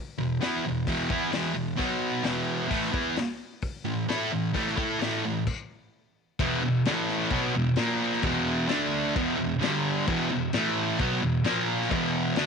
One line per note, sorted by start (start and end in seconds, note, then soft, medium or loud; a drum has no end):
0.18 0.37 E2 medium
0.18 0.37 B2 medium
0.41 0.63 E3 medium
0.41 0.64 B3 medium
0.41 0.64 E4 medium
0.41 snare loud
0.41 open hi-hat medium
0.65 0.83 E2 medium
0.65 0.84 B2 medium
0.87 1.10 E2 medium
0.87 1.09 B2 loud
0.87 1.09 E3 loud
0.87 kick loud
0.87 open hi-hat medium
1.10 1.32 E3 loud
1.10 1.33 B3 loud
1.10 1.33 E4 loud
1.10 kick loud
1.32 1.53 E2 medium
1.32 1.54 B2 medium
1.32 1.56 E3 loud
1.32 snare loud
1.32 open hi-hat medium
1.55 1.74 E2 medium
1.55 1.74 B2 medium
1.77 2.23 B2 medium
1.77 2.24 F#3 loud
1.77 2.24 B3 loud
1.77 kick loud
1.77 open hi-hat soft
2.24 2.70 E2 medium
2.24 2.69 B2 loud
2.24 2.68 E3 loud
2.24 snare loud
2.24 open hi-hat soft
2.69 2.91 A2 medium
2.69 2.90 E3 loud
2.69 2.92 A3 loud
2.69 kick loud
2.69 open hi-hat medium
2.84 snare soft
2.92 3.15 E3 medium
2.92 3.16 B3 medium
2.92 3.16 E4 loud
2.92 kick loud
3.16 muted distorted electric guitar stroke medium
3.16 snare loud
3.16 open hi-hat medium
3.62 kick loud
3.62 open hi-hat medium
3.85 4.04 A2 medium
3.85 4.05 E3 medium
4.09 4.31 A3 medium
4.09 4.32 E4 medium
4.09 4.31 A4 loud
4.09 snare loud
4.09 open hi-hat soft
4.32 4.51 A2 medium
4.32 4.51 E3 medium
4.54 4.77 A2 medium
4.54 4.76 E3 medium
4.54 4.75 A3 loud
4.54 kick loud
4.54 open hi-hat medium
4.67 snare soft
4.76 4.99 A3 medium
4.76 5.00 E4 medium
4.76 5.00 A4 loud
4.76 kick loud
4.99 5.23 A2 medium
4.99 5.23 E3 medium
4.99 5.23 A3 medium
4.99 snare loud
4.99 open hi-hat medium
5.24 5.43 A2 medium
5.24 5.43 E3 medium
5.47 kick medium
5.47 crash loud
6.39 6.61 E2 medium
6.39 6.62 B2 loud
6.39 6.62 E3 loud
6.39 kick loud
6.39 crash medium
6.62 6.81 E2 medium
6.62 6.81 B2 medium
6.85 7.31 A2 medium
6.85 7.31 E3 medium
6.85 7.32 A3 loud
6.85 snare loud
6.85 crash medium
7.08 snare soft
7.30 7.54 B2 medium
7.30 7.54 F#3 loud
7.30 7.54 B3 medium
7.30 kick loud
7.30 crash medium
7.55 7.73 E2 medium
7.55 7.73 B2 medium
7.76 8.22 A#2 medium
7.76 8.23 F3 medium
7.76 8.23 A#3 loud
7.76 snare loud
7.76 crash soft
8.13 snare soft
8.22 8.68 E2 loud
8.22 8.68 B2 loud
8.22 8.68 E3 loud
8.22 kick loud
8.22 crash medium
8.68 9.14 D3 medium
8.68 9.14 A3 medium
8.68 9.14 D4 loud
8.68 snare loud
8.68 crash medium
9.15 9.36 E2 loud
9.15 9.36 B2 medium
9.15 9.38 E3 loud
9.15 kick loud
9.15 crash medium
9.37 9.56 E2 medium
9.37 9.56 B2 medium
9.61 10.06 G2 medium
9.61 10.06 D3 medium
9.61 10.06 G3 loud
9.61 snare loud
9.61 crash medium
10.07 10.29 E2 loud
10.07 10.30 B2 medium
10.07 10.30 E3 loud
10.07 kick medium
10.07 crash medium
10.30 10.48 E2 medium
10.30 10.49 B2 medium
10.53 10.98 A2 medium
10.53 10.99 E3 loud
10.53 10.98 A3 loud
10.53 snare loud
10.53 crash medium
10.99 11.21 B2 loud
10.99 11.21 F#3 loud
10.99 11.22 B3 loud
10.99 kick medium
10.99 crash medium
11.21 11.39 E2 medium
11.21 11.40 B2 medium
11.44 11.89 A#2 medium
11.44 11.89 F3 medium
11.44 11.90 A#3 medium
11.44 snare loud
11.44 crash medium
11.82 snare soft
11.90 12.35 E2 loud
11.90 12.36 B2 loud
11.90 12.36 E3 loud
11.90 kick loud
11.90 crash medium
12.36 12.46 D3 medium
12.36 12.46 A3 loud
12.36 12.46 D4 loud
12.36 snare loud
12.36 crash medium